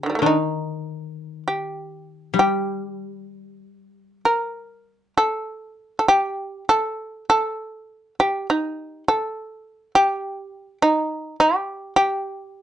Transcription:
Already playing: koto D3, shamisen G4
0.03 shamisen D3 D#3
0.10 shamisen G3
0.15 shamisen A3 A#3
0.22 koto D#3, shamisen D4
0.26 shamisen D#4
1.48 shamisen G4
2.34 koto G3
2.39 shamisen G4
4.25 shamisen A#4
5.18 shamisen A4
5.99 shamisen A4
6.08 shamisen G4
6.69 shamisen A4
7.30 shamisen A4
8.20 shamisen G4
8.50 shamisen D#4
9.08 shamisen A4
9.95 shamisen G4
10.82 shamisen D#4
11.40 shamisen G4
11.96 shamisen G4

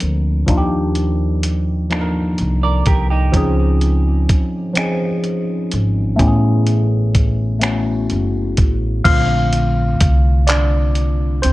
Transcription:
Already playing: tine electric piano F3 A#3 C4 D4 A#4
0.00 upright bass D2, closed hi-hat
0.46 upright bass D#2, tine electric piano F3 A#3 D4 D#4, kick, closed hi-hat
0.51 tine electric piano F4
0.57 tine electric piano G4
0.95 closed hi-hat
1.43 closed hi-hat
1.89 tine electric piano F3 A#3 D4 D#4, finger snap, closed hi-hat
1.94 tine electric piano A4
2.01 tine electric piano A#4
2.38 upright bass C2, closed hi-hat
2.63 clean electric guitar A#4 D5
2.86 upright bass C2, clean electric guitar G4 A#4, kick, closed hi-hat
3.10 clean electric guitar D#4 G4
3.32 upright bass C#2, tine electric piano F3 C4 C#4 D#4, kick, closed hi-hat
3.37 tine electric piano G#4
3.81 closed hi-hat
4.29 kick, closed hi-hat
4.74 tine electric piano F3 C4 C#4 D#4, finger snap, closed hi-hat
4.79 tine electric piano G#4
5.24 closed hi-hat
5.71 upright bass G#1, closed hi-hat
6.16 tine electric piano A3 B3 C#4 E4, kick, closed hi-hat
6.20 upright bass A1, tine electric piano G4
6.27 tine electric piano G#4
6.66 closed hi-hat
7.15 kick, closed hi-hat
7.59 tine electric piano A3 B3 C#4 E4, finger snap, closed hi-hat
7.64 tine electric piano F#4
8.10 upright bass F#1, closed hi-hat
8.57 upright bass A1, kick, closed hi-hat
9.04 upright bass A#1, tine electric piano D3 A3 C4 F4 F5, kick, closed hi-hat, crash
9.53 closed hi-hat
10.00 upright bass C2, kick, closed hi-hat
10.47 tine electric piano D4 D5, clap, closed hi-hat
10.95 closed hi-hat
11.42 upright bass D2, tine electric piano C4 C5, closed hi-hat

